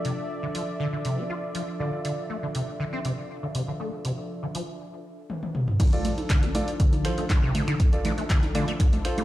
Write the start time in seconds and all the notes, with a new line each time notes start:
Already playing: F3 D4 F4 A4 D5 E5
0.05 C3, open hi-hat
0.43 D3
0.55 F3, open hi-hat
0.80 D3
0.93 D3
1.05 C3, open hi-hat
1.18 D4
1.30 F4
1.55 F3, open hi-hat
1.80 D3 F4 A4 D5
2.05 D3, open hi-hat
2.30 A3
2.43 D3
2.55 C3, open hi-hat
2.80 D3
2.93 C4
3.05 C3, open hi-hat
3.43 D3
3.55 C3, open hi-hat
3.68 D3
3.80 A3
4.05 C3, open hi-hat
4.43 D3
4.55 F3, open hi-hat
5.30 high tom
5.43 high tom
5.55 mid tom
5.68 mid tom
5.80 D3 F3 D4 A4, kick, closed hi-hat, crash, high conga
5.93 A3 F4 A4 D5, closed hi-hat
6.05 E3, snare, closed hi-hat, open hi-hat, low conga
6.18 closed hi-hat, high conga
6.30 D3, kick, snare, clap, closed hi-hat
6.43 D4, snare, closed hi-hat
6.55 F4 A4 D5, closed hi-hat, open hi-hat, high conga, low conga
6.68 closed hi-hat
6.80 D3, kick, closed hi-hat
6.93 closed hi-hat, high conga
7.05 E3 F4 A4 C5, finger snap, closed hi-hat, open hi-hat
7.18 A3, snare, closed hi-hat
7.30 D3, kick, snare, clap, closed hi-hat, high conga
7.43 C3
7.55 D3, snare, closed hi-hat, open hi-hat, low conga
7.68 D3, finger snap, closed hi-hat, high conga
7.80 kick, closed hi-hat
7.93 F4 A4 D5, closed hi-hat
8.05 E3, closed hi-hat, open hi-hat, high conga, low conga
8.18 A3, snare, closed hi-hat
8.30 D3, kick, snare, clap, closed hi-hat
8.43 snare, closed hi-hat, high conga
8.55 D3 F4 A4 D5, snare, closed hi-hat, open hi-hat, low conga
8.68 A3, closed hi-hat
8.80 D3, kick, closed hi-hat, high conga
8.93 closed hi-hat, low conga
9.05 F4 A4 C5, finger snap, closed hi-hat, open hi-hat
9.18 G3, closed hi-hat, high conga, low conga